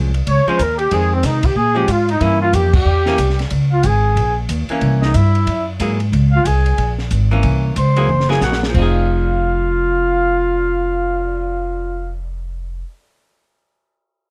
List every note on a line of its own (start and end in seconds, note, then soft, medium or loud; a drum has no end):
0.00 0.26 C2 medium
0.00 0.11 F3 soft
0.00 0.12 G#3 medium
0.00 0.12 C#4 medium
0.14 ride soft
0.27 0.45 C#2 medium
0.27 0.49 C#5 medium
0.27 0.51 C#5 medium
0.27 kick soft
0.27 ride medium
0.46 0.58 F3 medium
0.46 0.58 G#3 medium
0.46 0.59 C#4 medium
0.46 0.60 C5 medium
0.46 0.65 C5 medium
0.46 muted upright bass stroke soft
0.58 0.91 D#2 medium
0.58 0.76 A#4 medium
0.58 kick soft
0.58 hi-hat pedal medium
0.58 ride medium
0.63 0.79 A#4 medium
0.77 0.94 G4 medium
0.77 0.97 G4 medium
0.77 ride soft
0.91 1.23 F2 medium
0.91 1.40 D#3 soft
0.91 1.40 G#3 medium
0.91 1.41 C4 soft
0.91 1.12 G#4 medium
0.91 kick soft
0.91 ride medium
0.95 1.13 G#4 medium
1.12 1.26 C4 medium
1.12 1.27 C4 medium
1.23 1.55 C3 medium
1.23 1.47 D#4 medium
1.23 kick soft
1.23 snare soft
1.23 hi-hat pedal medium
1.23 ride medium
1.43 1.58 G4 medium
1.43 1.59 G4 medium
1.43 kick medium
1.43 ride medium
1.55 1.87 A#2 medium
1.55 1.76 G#4 medium
1.55 1.79 G#4 medium
1.55 kick soft
1.75 1.87 F3 medium
1.75 1.87 G#3 medium
1.75 1.87 C#4 medium
1.75 1.90 G4 medium
1.75 1.93 G4 medium
1.88 2.20 G#2 medium
1.88 2.08 F4 medium
1.88 2.10 F4 medium
1.88 kick soft
1.88 hi-hat pedal medium
1.88 ride medium
2.09 2.21 D#4 medium
2.09 2.24 D#4 medium
2.09 ride soft
2.19 2.52 G2 medium
2.19 2.70 E3 medium
2.19 2.70 A#3 medium
2.19 2.70 C#4 medium
2.19 2.40 E4 medium
2.19 2.42 E4 medium
2.19 kick soft
2.19 ride medium
2.41 2.55 F4 medium
2.41 2.57 F4 medium
2.53 2.85 F2 medium
2.53 2.74 G4 medium
2.53 kick soft
2.53 hi-hat pedal medium
2.53 ride medium
2.73 3.41 G4 medium
2.73 3.42 G4 medium
2.73 kick medium
2.73 crash medium
2.85 3.17 E2 medium
3.06 3.18 E3 medium
3.06 3.18 A#3 medium
3.06 3.18 C#4 medium
3.06 snare soft
3.18 3.50 C2 medium
3.18 kick soft
3.18 hi-hat pedal medium
3.18 ride medium
3.30 snare soft
3.39 snare soft
3.39 ride soft
3.50 3.83 C#2 medium
3.50 kick soft
3.50 ride medium
3.71 3.88 F4 medium
3.71 3.87 F5 medium
3.83 4.15 G#1 medium
3.83 4.38 G#4 medium
3.83 4.37 G#5 medium
3.83 kick soft
3.83 hi-hat pedal medium
3.83 ride medium
4.16 4.48 A#1 medium
4.16 kick soft
4.16 ride medium
4.49 4.68 D#2 medium
4.49 kick soft
4.49 hi-hat pedal medium
4.49 ride medium
4.69 5.12 E3 medium
4.69 5.13 A#3 medium
4.69 5.13 C#4 medium
4.69 muted upright bass stroke soft
4.69 ride soft
4.81 5.13 C2 medium
4.81 kick soft
4.81 ride medium
5.01 5.18 D#4 medium
5.01 5.16 D#5 medium
5.01 snare medium
5.14 5.46 G2 medium
5.14 5.68 E4 medium
5.14 5.67 E5 medium
5.14 kick soft
5.14 hi-hat pedal medium
5.14 ride medium
5.35 ride soft
5.47 5.79 F#2 medium
5.47 kick soft
5.47 ride medium
5.80 6.11 G#2 medium
5.80 5.98 F#3 soft
5.80 5.98 A#3 soft
5.80 5.98 E4 soft
5.80 5.99 G#4 medium
5.80 kick soft
5.80 hi-hat pedal medium
5.80 ride medium
6.00 ride soft
6.12 6.44 C#2 medium
6.12 kick soft
6.12 ride medium
6.31 6.46 F5 medium
6.36 6.48 F4 medium
6.45 6.77 C2 medium
6.45 6.99 G#4 medium
6.45 6.98 G#5 medium
6.45 kick soft
6.45 hi-hat pedal medium
6.45 ride medium
6.66 ride soft
6.78 7.10 A#1 medium
6.78 kick soft
6.78 ride medium
6.99 snare soft
7.11 7.42 G#1 medium
7.11 kick soft
7.11 hi-hat pedal medium
7.11 ride medium
7.31 7.74 E3 medium
7.31 7.74 A#3 medium
7.31 7.74 C#4 medium
7.43 7.75 C2 medium
7.43 kick soft
7.43 ride medium
7.76 8.08 C#2 medium
7.76 8.32 C5 medium
7.76 8.32 C6 medium
7.76 kick soft
7.76 hi-hat pedal medium
7.76 ride medium
7.96 8.08 F#3 medium
7.96 8.08 A#3 medium
7.96 8.08 E4 medium
7.96 8.08 G#4 medium
7.96 ride soft
8.09 8.40 F#1 medium
8.09 mid tom soft
8.20 snare soft
8.29 8.69 F#3 medium
8.29 8.72 A#3 medium
8.29 8.72 E4 medium
8.29 8.72 G#4 medium
8.29 8.42 G#4 medium
8.29 8.42 G#5 medium
8.29 snare medium
8.41 8.73 A#1 medium
8.41 8.61 F#5 medium
8.41 snare medium
8.41 hi-hat pedal medium
8.46 8.56 F#4 medium
8.52 snare medium
8.63 snare medium
8.70 12.83 F3 soft
8.74 12.81 F1 medium
8.74 12.86 C4 medium
8.74 12.12 F4 medium
8.74 12.12 F5 medium
8.74 kick soft
8.74 crash medium
8.78 12.87 D#4 soft
8.78 12.89 G#4 medium
8.95 cymbal swell soft